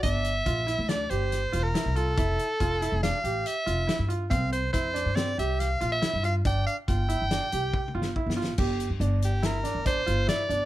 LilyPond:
<<
  \new Staff \with { instrumentName = "Soprano saxophone" } { \time 5/4 \key g \dorian \tempo 4 = 140 e''2 d''8 c''4~ c''16 bes'8. a'8~ | a'2 f''4 e''4. r8 | f''8 c''8 c''4 d''8 e''8 f''8. e''8. f''8 | g''8 f''8 g''2. r4 |
r4. g'8 bes'4 c''4 d''4 | }
  \new Staff \with { instrumentName = "Grand piano" } { \time 5/4 \key g \dorian d'4 f'8 e'8 d'8 g'4 f'8 e'8 f'8 | e'4 f'8 e'8 d'8 g'4 f'8 e'8 f'8 | c'4 e'8 d'8 c'8 g'4 f'8 e'8 f'8 | d'4 f'8 e'8 d'8 g'4 f'8 e'8 f'8 |
g'4 d'4 e'8 d'8 d'8 f'8 e'8 d'8 | }
  \new Staff \with { instrumentName = "Upright bass" } { \clef bass \time 5/4 \key g \dorian g,,4 bes,,8. d,8. g,,4 e,,8 r16 c,8. | f,,8 r8 f,,8. f,,8 r16 a,,8 r8 f,,8 r16 g,8. | c,4 f,8. g,8. c,4 bes,,8 r16 g,8. | g,,8 r8 g,,8. g,,8 r16 c,8 r8 g,,8 r16 g,,8. |
g,,8. g,16 g,,4.~ g,,16 g,,8. g,,8 r8 g,,16 r16 | }
  \new DrumStaff \with { instrumentName = "Drums" } \drummode { \time 5/4 <hh bd>8 hh8 <hh bd>8 hh8 <hh sn>8 hh8 <hh sn>8 hh8 <hh sn>8 hh8 | <hh bd>8 hh8 <hh bd>8 hh8 <hh sn>8 hh8 hh8 hh8 <hh sn>8 hh8 | <hh bd>8 hh8 <hh bd sn>8 hh8 <hh sn>8 hh8 <hh sn>8 hh8 <hh sn>8 hh8 | <hh bd>8 hh8 <hh bd>8 hh8 <hh sn>8 hh8 \tuplet 3/2 { <bd tommh>8 tommh8 sn8 bd8 sn8 sn8 } |
<cymc bd>8 hh8 hh8 hh8 <hh sn>8 <hh sn>8 <hh bd>8 hh8 <hh sn>8 hh8 | }
>>